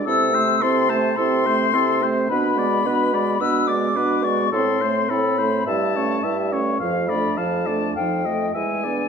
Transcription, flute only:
\new Staff \with { instrumentName = "Flute" } { \time 4/4 \key a \minor \tempo 4 = 106 e'''4 c'''8 a''8 c'''2 | b''2 e'''8 d'''4 cis'''8 | c'''4 b''4 a''4. r8 | f''8 b''8 a''4 g''4 gis''4 | }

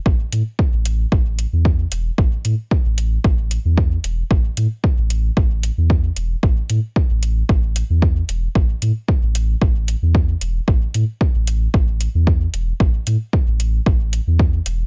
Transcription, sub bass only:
\new Staff \with { instrumentName = "Sub bass" } { \clef bass \time 4/4 \key c \major \tempo 4 = 113 a,,16 r16 a,16 r8 a,,8. a,,8. e,8. e,,16 r16 | a,,16 r16 a,16 r8 a,,8. a,,8. e,8. e,,16 r16 | a,,16 r16 a,16 r8 a,,8. a,,8. e,8. e,,16 r16 | a,,16 r16 a,16 r8 a,,8. a,,8. e,8. e,,16 r16 |
a,,16 r16 a,16 r8 a,,8. a,,8. e,8. e,,16 r16 | a,,16 r16 a,16 r8 a,,8. a,,8. e,8. e,,16 r16 | a,,16 r16 a,16 r8 a,,8. a,,8. e,8. e,,16 r16 | }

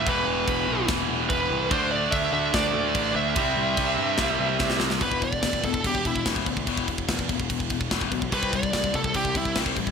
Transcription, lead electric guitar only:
\new Staff \with { instrumentName = "Lead electric guitar" } { \time 4/4 \key e \minor \tempo 4 = 145 b'2 r4 b'4 | c''8 d''8 e''8 e''8 d''4. e''8~ | e''2.~ e''8 r8 | b'8 d''4 a'8 g'8 e'8 r4 |
r1 | b'8 d''4 a'8 g'8 e'8 r4 | }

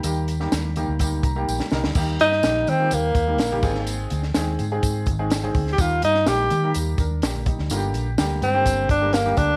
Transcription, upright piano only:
<<
  \new Staff \with { instrumentName = "Upright piano" } { \time 4/4 \key ees \major \tempo 4 = 125 r2 r8 bes''8 g''8 ees''8 | r1 | r1 | r2 r8 <d' bes'>8 <bes g'>8 <g ees'>8~ |
<g ees'>8 r2. r8 | }
  \new Staff \with { instrumentName = "Upright piano" } { \time 4/4 \key ees \major <ees g bes g'>8 r16 <ees g bes g'>8 r16 <ees g bes g'>16 r16 <ees g bes g'>8 r16 <ees g bes g'>8 r16 <ees g bes bes'>16 r16 | <ees g bes g'>8. r16 <ees g bes g'>8 r16 <ees g bes f' g'>8. r16 <ees g bes g'>16 r16 <ees g bes g'>16 <ees aes c' aes'>8~ | <ees aes c' aes'>8. r16 <ees aes c' aes'>8 r16 <ees aes c' aes'>8. r16 <ees aes c' aes'>16 r16 <ees aes c' aes'>8 r16 | <ees g bes g'>8. r16 <ees g bes g'>8 r16 <ees g bes g'>8. r4. |
<d g bes f' g'>8. r16 <d g bes g'>8 r16 <d g bes g'>8. r16 <d g bes g'>16 r16 <d g bes g'>8 r16 | }
>>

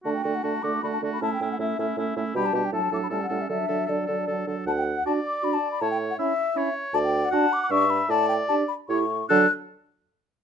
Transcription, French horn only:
\new Staff \with { instrumentName = "French horn" } { \time 3/4 \key d \major \tempo 4 = 155 a8 a8 a8 a8 a8 a8 | a8 a8 a8 a8 a8 a8 | g8 g8 fis8 fis8 g8 g8 | fis8 fis8 fis8 fis8 fis8 fis8 |
r4 d'4 d'4 | r4 cis'4 cis'4 | r4 d'4 d'4 | r4 d'4 e'4 |
fis8 r2 r8 | }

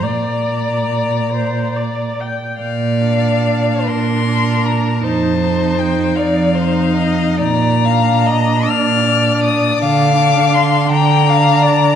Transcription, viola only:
\new Staff \with { instrumentName = "Viola" } { \time 6/8 \key bes \major \tempo 4. = 50 d''4. c''8 d''8 g''8 | r8 d'4. d'4 | ees'8 ees'4. ees'4 | r8 d'4. d'4 |
d'8 d'4. d'4 | }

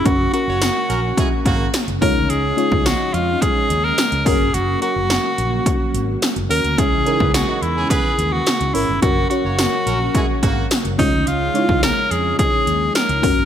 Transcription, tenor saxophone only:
\new Staff \with { instrumentName = "Tenor saxophone" } { \time 4/4 \key cis \dorian \tempo 4 = 107 fis'8 fis'2~ fis'8 r8 ais'8 | gis'4 fis'8 eis'8 gis'8. ais'8. gis'8 | fis'8 fis'2~ fis'8 r8 ais'8 | gis'4 fis'8 e'8 gis'8. fis'8. e'8 |
fis'8 fis'2~ fis'8 r8 dis'8 | eis'4 ais'8 gis'8 gis'4 ais'4 | }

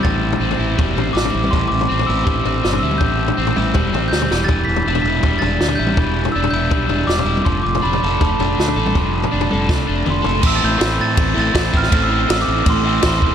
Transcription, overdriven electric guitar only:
\new Staff \with { instrumentName = "Overdriven electric guitar" } { \time 4/4 \key a \minor \tempo 4 = 162 <a, g c' e'>4 c'8 e'8 g8 c'8 g8 e'8 | a,4 c'8 e'8 g8 c'8 g8 e'8 | a,4 c'8 e'8 g8 c'8 g8 e8 | e4 d'8 e'8 g8 d'8 g8 e'8 |
e4 d'8 e'8 g8 d'8 g8 e'8 | f4 d'8 a'8 a8 d'8 a8 a'8 | f4 d'8 a'8 a8 d'8 a8 a'8 | <a, e a c' e'>8 <a c' e'>8 <e a c' e'>4. <a c' e'>8 <a, e a c' e'>8 <a c' e'>8 |
<a, e a c' e'>8 <a c' e'>8 <e a c' e'>4. <a c' e'>8 <a, e a c' e'>8 <a c' e'>8 | }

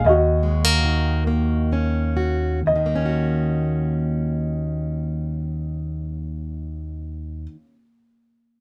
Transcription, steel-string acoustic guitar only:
\new Staff \with { instrumentName = "Steel-string acoustic guitar" } { \time 6/8 \key ees \minor \tempo 4. = 40 << { r8 aes16 bes8. bes8 des'8 ges'8 | <ees bes des' ges'>2.~ | <ees bes des' ges'>2. | } \\ { ees,4 ees2 | ees,2.~ | ees,2. | } >> }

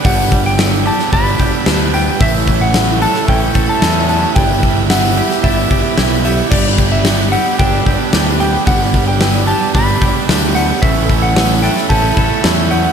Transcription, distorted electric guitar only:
\new Staff \with { instrumentName = "Distorted electric guitar" } { \time 4/4 \key e \dorian \tempo 4 = 111 <g, d g b d'>8 <g, d g b d'>8 <g, d g b d'>8 <g, d g b d'>8 <g, d g b d'>8 <g, d g b d'>8 <g, d g b d'>8 <g, d g b d'>8 | <a, e a cis' e'>8 <a, e a cis' e'>8 <a, e a cis' e'>8 <a, e a cis' e'>8 <a, e a cis' e'>8 <a, e a cis' e'>8 <a, e a cis' e'>8 <a, e a cis' e'>8 | <g b e' g'>8 <g b e' g'>8 <g b e' g'>8 <g b e' g'>8 <g b e' g'>8 <g b e' g'>8 <g b e' g'>8 <g b e' g'>8 | <g b d' g'>8 <g b d' g'>8 <g b d' g'>8 <g b d' g'>8 <g b d' g'>8 <g b d' g'>8 <g b d' g'>8 <g b d' g'>8 |
<g b d' g'>8 <g b d' g'>8 <g b d' g'>8 <g b d' g'>8 <g b d' g'>8 <g b d' g'>8 <g b d' g'>8 <g b d' g'>8 | <a cis' e' a'>8 <a cis' e' a'>8 <a cis' e' a'>8 <a cis' e' a'>8 <a cis' e' a'>8 <a cis' e' a'>8 <a cis' e' a'>8 <a cis' e' a'>8 | }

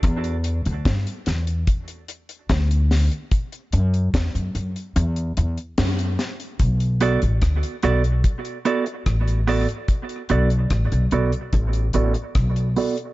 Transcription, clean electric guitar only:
\new Staff \with { instrumentName = "Clean electric guitar" } { \time 4/4 \key b \minor \tempo 4 = 73 r1 | r1 | r8 <b fis' a' d''>8 r8 <b fis' a' d''>8 r8 <b fis' a' d''>8 r8 <b fis' a' d''>8 | r8 <b fis' a' d''>8 r8 <b fis' a' d''>8 r8 <b fis' a' d''>8 r8 <b fis' a' d''>8 | }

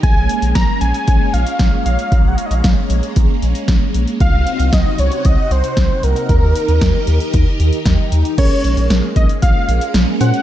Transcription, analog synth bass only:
\new Staff \with { instrumentName = "Analog synth bass" } { \clef bass \time 4/4 \key bes \minor \tempo 4 = 115 bes,,16 bes,,16 r16 bes,,16 bes,,16 r16 bes,,16 r16 bes,,16 r16 bes,,16 r16 bes,,16 r16 bes,,16 r16 | bes,,16 bes,,16 r16 bes,,16 bes,,16 r16 bes,,16 r16 bes,,16 r16 bes,,16 r16 bes,,16 r16 bes,,16 r16 | c,16 c,16 r16 c,16 c,16 r16 c,16 r16 c,16 r16 c,16 r16 c,16 r16 c,16 r16 | ees,16 ees,16 r16 ees,16 ees,16 r16 ees,16 r16 ees,16 r16 ees,16 r16 ees,16 r16 ees,16 r16 |
bes,,16 r16 bes,,16 bes,,16 bes,,16 r16 bes,,16 r16 bes,,16 r16 bes,,16 r16 bes,,16 r16 bes,16 r16 | }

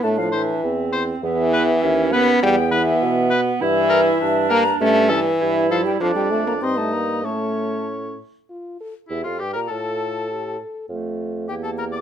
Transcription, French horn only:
\new Staff \with { instrumentName = "French horn" } { \time 2/4 \key e \phrygian \tempo 4 = 100 a16 f16 e4 r8 | e4. b8 | g8 e4 r8 | \key a \phrygian e4. bes8 |
a8 e4 f16 g16 | f16 g16 a16 bes16 c'16 a16 bes8 | a4 r4 | f'8 a'8 g'4 |
f'4 g'8 a'8 | f'4 g'4 | }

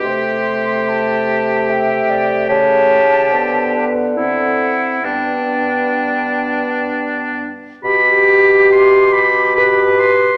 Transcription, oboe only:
\new Staff \with { instrumentName = "Oboe" } { \time 3/4 \key g \major \tempo 4 = 70 g'2. | g'4. r8 e'4 | d'2~ d'8 r8 | b''4 c'''8 b''8 b''8 c'''8 | }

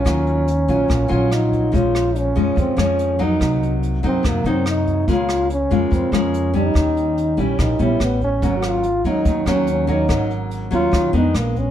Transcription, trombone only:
\new Staff \with { instrumentName = "Trombone" } { \time 4/4 \key aes \mixolydian \tempo 4 = 144 des'2. ees'4 | f'4 des'4 c'8 des'4 ees'8~ | ees'4 r8 c'8 bes8 c'8 ees'4 | f'4 des'4 c'8 des'4 ees'8~ |
ees'4. des'8 ees'8 fes'8 b8 cis'8~ | \tuplet 3/2 { cis'8 ges'16 f'8.~ } f'8 ees'4 des'8 des'8 ees'8~ | ees'8 r4 f'4 ees'8 bes8 des'8 | }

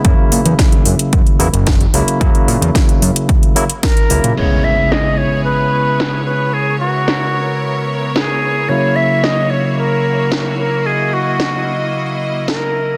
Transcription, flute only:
\new Staff \with { instrumentName = "Flute" } { \time 4/4 \key cis \dorian \tempo 4 = 111 r1 | r2. ais'4 | cis''8 e''8 dis''8 cis''8 b'4. b'8 | gis'8 fis'2 r8 gis'4 |
cis''8 e''8 dis''8 cis''8 ais'4. ais'8 | gis'8 fis'2 r8 ais'4 | }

